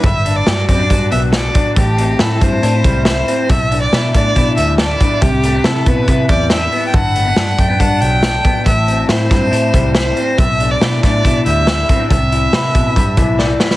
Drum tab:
HH |x-x-x-x-x-x-x-x-|x-x-x-x-x-x-x-x-|x-x-x-x-x-x-x-x-|x-x-x-x-x-x-x-o-|
SD |----o-------o---|----o-------o---|----o-------o---|----o-------o---|
BD |o-----o-o-----o-|o-----o---o-----|o-----o-o-----o-|o-----o-o-o-----|

HH |x-x-x-x-x-x-x-x-|x-x-x-x-x-x-x-x-|x-x-x-x-x-x-x-x-|x-x-x-x-x-x-----|
SD |----o-------o---|----o-o-----o---|----o-o-----o---|----o-------o-oo|
BD |o-----o-o-----o-|o-----o---o-----|o-----o-o-----o-|o-----o-o-o-----|